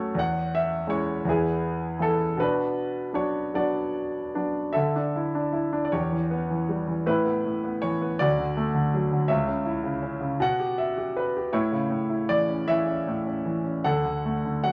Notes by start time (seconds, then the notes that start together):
Already playing: F#2 A3 C#4 F#4 A4 C#5 F#5
0.15 E2 C#5
0.19 F#5
0.55 E5
0.87 G#3 C#4 E4 C#5
1.25 E2 B3 E4
1.29 G#4
1.99 E3 B3 E4 A4
2.37 B2 D4 F#4 B4
3.13 F#3 B3 D4 C#5
3.54 F#3 B3 D4 F#4 D5
4.35 F#3 B3 D4
4.73 D3 A4 E5
4.96 D4
5.16 E4
5.35 D4
5.53 E4
5.73 D4
5.85 D5
5.92 E2 G4 C#5
6.12 E3
6.31 B3
6.50 E3
6.69 G3
6.88 E3
7.06 A2 E4 B4
7.25 B3
7.45 A2
7.64 B3
7.82 E3 C#5
8.01 B3
8.19 D2 F#4 D5
8.38 D3
8.57 A3
8.75 D3
8.94 F#3
9.12 D3
9.28 C#2 C#5 E5
9.48 C#3
9.65 E4
9.83 C#3
10.02 C#4
10.21 C#3
10.40 B2 F#5
10.60 G4
10.78 E5
10.97 G4
11.17 B4
11.37 G4
11.53 A2 E4 C#5
11.72 C#3
11.90 A2
12.10 E4
12.29 E3 D5
12.49 C#4
12.67 E3 C#5 E5
12.86 C#4
13.07 A2
13.27 C#4
13.46 E3
13.64 C#4
13.84 D2 A4 F#5
14.05 D3
14.25 A3
14.45 D3
14.64 F#3 F#5